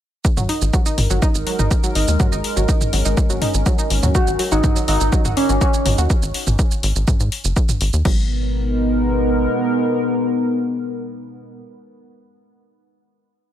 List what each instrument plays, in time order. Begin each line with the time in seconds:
0.25 analog synth pad G#3 D#4 A#4, kick, shaker
0.37 analog synth bass G#1, synth pluck F#3 F#4, mid tom, shaker
0.49 synth pluck D#4 D#5, open hi-hat
0.62 analog synth bass G#1, shaker
0.73 synth pluck F#3 F#4, kick, shaker
0.86 synth pluck D#4 D#5, shaker
0.98 analog synth bass G#1, mid tom, open hi-hat
1.10 analog synth bass G#1, synth pluck F#3 F#4, shaker
1.22 synth pluck D#4 D#5, kick, shaker
1.35 analog synth bass G#1, shaker
1.47 synth pluck F#3 F#4, open hi-hat
1.59 analog synth bass G#1, synth pluck D#4 D#5, mid tom, shaker
1.71 kick, shaker
1.83 synth pluck F#3 F#4, shaker
1.95 analog synth bass G#1, synth pluck D#4 D#5, open hi-hat
2.08 analog synth bass D#2, shaker
2.20 synth pluck F#3 F#4, analog synth pad C#4, kick, mid tom, shaker
2.32 analog synth bass G#1, synth pluck D#4 D#5, shaker
2.44 open hi-hat
2.56 analog synth bass G#1, synth pluck F#3 F#4, shaker
2.68 synth pluck D#4 D#5, kick, shaker
2.81 mid tom, shaker
2.93 analog synth bass G#1, synth pluck F#3 F#4, open hi-hat
3.05 analog synth bass G#1, synth pluck D#4 D#5, shaker
3.17 kick, shaker
3.30 analog synth bass G#1, synth pluck F#3 F#4, shaker
3.42 synth pluck D#4 D#5, mid tom, open hi-hat
3.54 analog synth bass G#1, shaker
3.66 synth pluck F#3 F#4, kick, shaker
3.79 synth pluck D#4 D#5, shaker
3.90 analog synth bass G#1, open hi-hat
4.03 analog synth bass D#2, synth pluck F#3 F#4, mid tom, shaker
4.15 analog synth pad D#4 D#5, analog synth lead F#4, synth pluck F#4 F#5, synth bell F#4, kick, shaker
4.27 analog synth bass G#1, shaker
4.39 synth pluck F#3 F#4, open hi-hat
4.52 analog synth bass G#1, analog synth lead D#4, synth bell D#4, synth pluck F#4 F#5, shaker
4.64 kick, mid tom, shaker
4.76 synth pluck F#3 F#4, shaker
4.88 analog synth bass G#1, analog synth lead D#4, synth bell D#4, synth pluck F#4 F#5, open hi-hat
5.01 analog synth bass G#1, shaker
5.12 synth pluck F#3 F#4, kick, shaker
5.25 analog synth bass G#1, synth pluck F#4 F#5, mid tom, shaker
5.37 analog synth lead C#4, synth bell C#4, open hi-hat
5.49 analog synth bass G#1, synth pluck F#3 F#4, shaker
5.61 synth bell C#4, analog synth lead C#4, synth pluck F#4 F#5, kick, shaker
5.74 shaker
5.86 analog synth bass G#1, synth pluck F#3 F#4, mid tom, open hi-hat
5.98 analog synth bass D#2, synth pluck F#4 F#5, shaker
6.10 kick, shaker
6.23 analog synth bass G#1, shaker
6.34 open hi-hat
6.47 analog synth bass G#1, mid tom, shaker
6.59 kick, shaker
6.71 shaker
6.83 analog synth bass G#1, open hi-hat
6.96 analog synth bass G#1, shaker
7.08 kick, mid tom, shaker
7.20 analog synth bass G#2, shaker
7.32 open hi-hat
7.44 analog synth bass F#1, shaker
7.56 kick, shaker
7.69 mid tom, shaker
7.81 analog synth bass G#1, open hi-hat
7.93 analog synth bass D#2, shaker
8.05 analog synth bass G#1, synth pluck F#3, analog synth pad G#3 D#4 A#4, analog synth lead B3, kick, crash